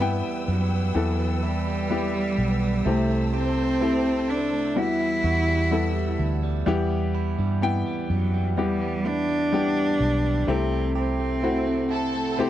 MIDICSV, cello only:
0, 0, Header, 1, 2, 480
1, 0, Start_track
1, 0, Key_signature, 1, "minor"
1, 0, Tempo, 952381
1, 1442, Time_signature, 4, 2, 24, 8
1, 6299, End_track
2, 0, Start_track
2, 0, Title_t, "Cello"
2, 0, Program_c, 0, 42
2, 255, Note_on_c, 0, 54, 88
2, 737, Note_on_c, 0, 55, 103
2, 744, Note_off_c, 0, 54, 0
2, 1448, Note_on_c, 0, 57, 92
2, 1455, Note_off_c, 0, 55, 0
2, 1685, Note_off_c, 0, 57, 0
2, 1688, Note_on_c, 0, 60, 110
2, 2167, Note_on_c, 0, 62, 97
2, 2174, Note_off_c, 0, 60, 0
2, 2409, Note_on_c, 0, 64, 108
2, 2416, Note_off_c, 0, 62, 0
2, 3125, Note_off_c, 0, 64, 0
2, 4095, Note_on_c, 0, 54, 90
2, 4312, Note_off_c, 0, 54, 0
2, 4333, Note_on_c, 0, 55, 101
2, 4572, Note_on_c, 0, 62, 125
2, 4579, Note_off_c, 0, 55, 0
2, 5285, Note_on_c, 0, 60, 105
2, 5293, Note_off_c, 0, 62, 0
2, 5521, Note_off_c, 0, 60, 0
2, 5524, Note_on_c, 0, 60, 100
2, 6223, Note_off_c, 0, 60, 0
2, 6299, End_track
0, 0, End_of_file